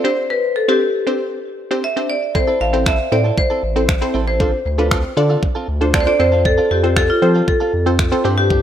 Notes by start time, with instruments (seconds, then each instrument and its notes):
0.04 synth stab C4 D4 G4 C5, marimba C5
0.30 marimba B4
0.56 marimba A4
0.68 synth stab C4 D4 G4 C5, marimba G4
1.07 synth stab C4 D4 G4 C5
1.71 synth stab C4 D4 G4 C5
1.84 marimba E5
1.96 synth stab C4 D4 G4 C5
2.10 marimba D5
2.35 synth stab C4 E4 A4 C5, marimba C5, muted clean electric guitar stroke, kick
2.47 clean electric guitar C4 E4 A4
2.60 analog synth bass A1, clean electric guitar C4 E4 A4, marimba F5
2.73 synth stab C4 E4 A4 C5, muted clean electric guitar stroke
2.86 clean electric guitar C4 E4 A4, marimba E5, finger snap, kick
2.99 muted clean electric guitar stroke
3.12 analog synth bass A2, synth stab C4 E4 A4 C5, marimba D5
3.24 clean electric guitar C4 E4 A4
3.38 marimba C5, kick
3.50 clean electric guitar C4 E4 A4
3.63 analog synth bass A1, muted clean electric guitar stroke
3.76 synth stab C4 E4 A4 C5, muted clean electric guitar stroke
3.89 finger snap, muted clean electric guitar stroke, kick
4.01 synth stab C4 E4 A4 C5, muted clean electric guitar stroke
4.14 analog synth bass A1, clean electric guitar C4 E4 A4
4.27 clean electric guitar C4 E4 A4, marimba C5
4.40 clean electric guitar C4 F4 A4, synth stab D4 F4 A4 C5, kick
4.53 muted clean electric guitar stroke
4.65 analog synth bass D2, muted clean electric guitar stroke
4.78 clean electric guitar C4 F4 A4, synth stab D4 F4 A4 B4
4.91 clean electric guitar C4 F4 A4, finger snap, kick
5.04 muted clean electric guitar stroke
5.17 analog synth bass D3, synth stab D4 F4 A4 D5, muted clean electric guitar stroke
5.29 clean electric guitar C4 F4 A4
5.42 muted clean electric guitar stroke, kick
5.55 clean electric guitar C4 F4 A4
5.68 analog synth bass D2, muted clean electric guitar stroke
5.81 synth stab D4 F4 A4 C5, muted clean electric guitar stroke
5.94 clean electric guitar C4 F4 A4, marimba D5, finger snap, kick
6.00 marimba C5
6.07 synth stab D4 F4 A4 C5, marimba D5, muted clean electric guitar stroke
6.19 analog synth bass F2, synth stab C4 F4 A4 C5, marimba C5, muted clean electric guitar stroke
6.32 clean electric guitar C4 F4 A4
6.45 marimba A4, muted clean electric guitar stroke, kick
6.58 clean electric guitar C4 F4 A4
6.70 analog synth bass F2, clean electric guitar C4 F4 A4, marimba G4
6.83 synth stab C4 F4 A4 C5, muted clean electric guitar stroke
6.96 clean electric guitar C4 F4 A4, marimba A4, finger snap, kick
7.09 marimba F4, muted clean electric guitar stroke
7.22 analog synth bass F3, synth stab C4 F4 A4 C5, muted clean electric guitar stroke
7.35 clean electric guitar C4 F4 A4
7.48 marimba A4, muted clean electric guitar stroke, kick
7.60 clean electric guitar C4 F4 A4
7.73 analog synth bass F2, muted clean electric guitar stroke
7.86 synth stab C4 F4 A4 C5, muted clean electric guitar stroke
7.99 finger snap, muted clean electric guitar stroke, kick
8.12 synth stab C4 F4 A4 C5, muted clean electric guitar stroke
8.24 analog synth bass G2, clean electric guitar C4 D4 G4, synth stab C4 D4 G4 C5
8.37 clean electric guitar C4 D4 G4, marimba G4
8.50 clean electric guitar C4 D4 G4, kick